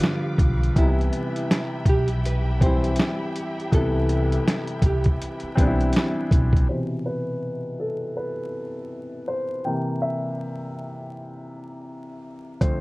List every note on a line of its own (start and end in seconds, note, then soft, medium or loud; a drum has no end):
0.00 0.78 D3 medium
0.00 0.78 F3 medium
0.00 0.78 G3 medium
0.00 0.78 B3 medium
0.00 0.78 F4 loud
0.00 0.75 G4 medium
0.00 0.73 F5 medium
0.00 6.65 B5 medium
0.00 0.73 D6 medium
0.00 snare loud
0.00 closed hi-hat medium
0.38 0.70 B1 loud
0.38 kick medium
0.38 closed hi-hat medium
0.63 closed hi-hat soft
0.76 1.08 C2 loud
0.76 2.17 C3 medium
0.76 2.18 E3 medium
0.76 2.19 G3 medium
0.76 1.47 E4 medium
0.76 6.65 G4 medium
0.76 6.65 E5 medium
0.76 6.65 G5 medium
0.76 kick loud
0.76 closed hi-hat medium
0.80 2.19 B3 medium
0.80 0.86 D#4 medium
0.88 2.23 E4 medium
1.01 closed hi-hat soft
1.13 closed hi-hat medium
1.36 closed hi-hat medium
1.51 snare loud
1.51 closed hi-hat medium
1.86 2.94 B1 medium
1.86 2.08 G4 medium
1.86 kick medium
1.86 closed hi-hat medium
2.08 closed hi-hat soft
2.25 2.59 B4 medium
2.25 closed hi-hat medium
2.60 3.68 E3 medium
2.60 3.68 G3 medium
2.60 3.67 C4 medium
2.60 2.96 C5 medium
2.60 kick medium
2.60 closed hi-hat medium
2.66 3.70 E4 medium
2.84 closed hi-hat soft
2.96 snare loud
2.96 closed hi-hat medium
3.36 closed hi-hat medium
3.60 closed hi-hat soft
3.72 4.36 C2 loud
3.72 5.14 C3 medium
3.72 5.14 E3 medium
3.72 5.15 G3 medium
3.72 5.15 B3 medium
3.72 4.44 A4 loud
3.72 kick loud
3.72 closed hi-hat medium
3.77 5.16 E4 medium
4.09 closed hi-hat medium
4.32 closed hi-hat soft
4.47 snare medium
4.47 closed hi-hat medium
4.67 closed hi-hat soft
4.82 5.14 C2 medium
4.82 5.04 G4 medium
4.82 kick medium
4.82 closed hi-hat medium
5.04 kick medium
5.04 closed hi-hat soft
5.22 closed hi-hat medium
5.40 muted upright bass stroke soft
5.40 closed hi-hat soft
5.55 5.89 B1 medium
5.55 6.63 E3 medium
5.55 6.64 G3 medium
5.55 6.63 C4 medium
5.55 kick medium
5.55 closed hi-hat medium
5.59 6.65 B3 medium
5.59 5.67 D4 medium
5.67 6.69 E4 medium
5.81 closed hi-hat soft
5.93 snare loud
5.93 closed hi-hat medium
6.31 6.63 B1 medium
6.31 kick medium
6.31 closed hi-hat medium
6.53 kick medium
6.53 closed hi-hat soft
6.69 7.21 B2 medium
6.69 7.21 C3 medium
6.69 7.21 E3 soft
6.69 6.77 C5 medium
7.06 7.82 B4 medium
7.80 8.14 A4 medium
8.17 9.31 B4 medium
9.28 9.66 C5 medium
9.65 10.72 C3 medium
9.65 10.73 E3 soft
9.65 10.73 A#3 medium
9.65 10.03 G5 loud
10.02 12.20 E5 medium
12.61 12.80 F2 medium
12.61 12.80 D3 soft
12.61 12.80 A3 medium
12.61 12.80 C5 medium
12.61 kick medium
12.61 closed hi-hat medium